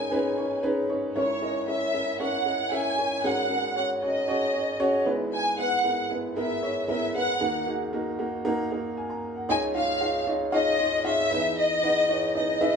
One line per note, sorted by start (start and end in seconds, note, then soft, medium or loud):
0.00 1.12 G#1 medium
0.00 1.12 G#2 medium
0.00 0.12 C#4 medium
0.00 0.12 D#4 medium
0.00 0.11 G#4 medium
0.00 1.16 A#4 medium
0.00 0.12 B4 medium
0.00 0.37 C#5 medium
0.00 0.60 G#5 medium
0.11 0.34 C#4 loud
0.11 0.34 D#4 loud
0.11 0.34 G#4 medium
0.11 0.34 B4 loud
0.37 0.60 C#4 medium
0.37 0.60 D#4 medium
0.37 0.60 G#4 medium
0.37 0.60 C#5 medium
0.63 0.86 C#4 loud
0.63 0.86 D#4 medium
0.63 0.86 G#4 loud
0.63 0.86 B4 loud
0.90 1.12 C#4 medium
0.90 1.12 D#4 medium
0.90 1.12 G#4 medium
0.90 1.12 C#5 medium
1.16 3.20 G#1 medium
1.16 3.20 G#2 medium
1.16 1.38 C#4 medium
1.16 1.38 E4 medium
1.16 1.38 A#4 medium
1.16 1.38 C#5 loud
1.16 1.64 C#5 medium
1.42 1.64 C#4 medium
1.42 1.64 E4 medium
1.42 1.64 A#4 medium
1.42 1.64 D#5 medium
1.68 1.90 C#4 medium
1.68 1.90 E4 medium
1.68 1.90 A#4 medium
1.68 1.90 C#5 medium
1.68 2.17 E5 medium
1.94 2.16 C#4 medium
1.94 2.16 E4 medium
1.94 2.16 A#4 medium
1.94 2.16 E5 medium
2.20 2.42 C#4 medium
2.20 2.42 E4 medium
2.20 2.42 A#4 medium
2.20 2.42 C#5 loud
2.20 2.72 F#5 medium
2.46 2.68 C#4 medium
2.46 2.68 E4 soft
2.46 2.68 A#4 medium
2.46 2.68 D#5 medium
2.72 2.94 C#4 medium
2.72 2.94 E4 medium
2.72 2.94 A#4 medium
2.72 2.94 E5 medium
2.72 3.24 G#5 loud
2.98 3.20 C#4 medium
2.98 3.20 E4 medium
2.98 3.21 A#4 medium
2.98 3.20 C#5 medium
3.24 5.02 G#1 medium
3.24 5.02 G#2 medium
3.24 3.47 C#4 medium
3.24 3.47 F#4 medium
3.24 3.46 G#4 medium
3.24 3.46 A#4 medium
3.24 3.76 F#5 medium
3.50 3.72 C#4 medium
3.50 3.72 F#4 medium
3.50 3.72 G#4 medium
3.50 3.72 A#4 medium
3.76 3.98 C#4 medium
3.76 3.99 F#4 medium
3.76 3.99 G#4 medium
3.76 3.99 C#5 medium
3.76 3.89 F#5 medium
4.02 4.25 C#4 medium
4.02 4.25 F#4 medium
4.02 4.25 G#4 medium
4.02 4.25 C#5 medium
4.02 5.03 D#5 medium
4.28 4.50 C#4 medium
4.28 4.51 F#4 medium
4.28 4.50 G#4 medium
4.28 4.51 C#5 loud
4.53 4.76 C#4 medium
4.53 4.76 F#4 medium
4.53 4.76 G#4 medium
4.53 4.76 C#5 medium
4.80 5.03 C#4 loud
4.80 5.03 F#4 loud
4.80 5.02 G#4 loud
4.80 5.02 C#5 loud
5.06 7.10 G#1 medium
5.06 7.10 G#2 medium
5.06 5.51 B3 medium
5.06 5.51 E4 medium
5.06 5.51 G#4 medium
5.06 5.51 B4 medium
5.33 5.57 G#5 loud
5.58 5.81 B3 medium
5.58 5.81 E4 medium
5.58 5.81 G#4 medium
5.58 5.81 B4 medium
5.58 6.07 F#5 loud
5.83 6.06 B3 medium
5.83 6.06 E4 medium
5.83 6.07 G#4 medium
5.83 6.06 A#4 medium
6.10 6.33 B3 medium
6.10 6.33 E4 medium
6.10 6.33 G#4 medium
6.10 6.33 B4 medium
6.36 6.59 B3 loud
6.36 6.59 E4 medium
6.36 6.59 G#4 medium
6.36 6.59 A#4 loud
6.36 6.85 E5 medium
6.62 6.85 B3 medium
6.62 6.85 E4 medium
6.62 6.85 G#4 medium
6.62 6.85 C#5 medium
6.88 7.11 B3 medium
6.88 7.11 E4 medium
6.88 7.11 G#4 medium
6.88 7.11 A#4 loud
6.88 7.13 E5 medium
7.14 7.37 B3 medium
7.14 7.37 E4 medium
7.14 7.37 G#4 medium
7.14 7.37 B4 medium
7.14 7.63 F#5 loud
7.41 9.45 D#2 medium
7.41 9.45 D#3 medium
7.41 7.63 A#3 medium
7.41 7.63 D#4 medium
7.41 7.63 F#4 medium
7.41 7.63 A#4 medium
7.66 7.89 A#3 medium
7.66 7.89 D#4 medium
7.66 7.89 F#4 medium
7.66 7.89 G#4 medium
7.93 8.15 A#3 medium
7.93 8.15 D#4 medium
7.93 8.15 F#4 medium
7.93 8.15 A#4 medium
8.19 8.41 A#3 medium
8.19 8.41 D#4 medium
8.19 8.41 F#4 medium
8.19 8.41 A#4 medium
8.45 8.67 A#3 loud
8.45 8.67 D#4 medium
8.45 8.67 F#4 medium
8.45 8.67 A#4 loud
8.71 8.94 A#3 medium
8.71 8.94 D#4 medium
8.71 8.94 F#4 medium
8.71 8.94 A#4 medium
8.97 9.09 G#5 medium
9.10 9.34 A#5 medium
9.36 9.61 F#5 medium
9.49 11.27 C#2 medium
9.49 11.27 C#3 medium
9.49 9.71 D#4 medium
9.49 9.71 F4 medium
9.49 9.71 G#4 medium
9.49 9.71 C#5 medium
9.49 9.71 D#5 loud
9.49 9.61 G#5 loud
9.75 9.97 D#4 medium
9.75 9.97 F4 medium
9.75 9.97 G#4 medium
9.75 9.97 C#5 medium
9.75 9.97 F5 medium
9.75 10.24 F5 loud
10.01 10.23 D#4 medium
10.01 10.23 F4 medium
10.01 10.23 G#4 medium
10.01 10.23 C#5 medium
10.01 10.24 F5 medium
10.27 10.50 D#4 medium
10.27 10.50 F4 medium
10.27 10.50 G#4 medium
10.27 10.50 C#5 medium
10.27 10.50 D#5 medium
10.52 10.75 D#4 loud
10.52 10.75 F4 medium
10.52 10.75 G#4 medium
10.52 10.75 C#5 medium
10.52 11.02 D#5 loud
10.52 10.75 F5 loud
10.79 11.01 D#4 medium
10.79 11.02 F4 medium
10.79 11.01 G#4 medium
10.79 11.02 C#5 medium
10.79 11.01 D#5 medium
11.04 11.27 D#4 medium
11.04 11.27 F4 medium
11.04 11.27 G#4 medium
11.04 11.27 C#5 medium
11.04 11.57 E5 loud
11.04 11.27 F5 medium
11.31 12.76 E2 medium
11.31 12.76 E3 medium
11.31 11.76 D#4 medium
11.31 11.76 E4 medium
11.31 11.76 G#4 medium
11.31 11.76 B4 medium
11.31 11.76 D#5 medium
11.58 12.32 D#5 loud
11.83 12.06 D#4 medium
11.83 12.06 E4 medium
11.83 12.06 G#4 medium
11.83 12.06 B4 medium
11.83 12.06 F#5 medium
12.09 12.32 D#4 medium
12.09 12.32 E4 medium
12.09 12.32 G#4 medium
12.09 12.32 B4 medium
12.09 12.32 C#5 medium
12.35 12.58 D#4 medium
12.35 12.58 E4 medium
12.35 12.58 G#4 medium
12.35 12.58 B4 medium
12.35 12.58 D#5 medium
12.35 12.76 D#5 medium
12.61 12.76 D#4 medium
12.61 12.76 E4 medium
12.61 12.76 G#4 medium
12.61 12.76 B4 medium
12.61 12.76 E5 loud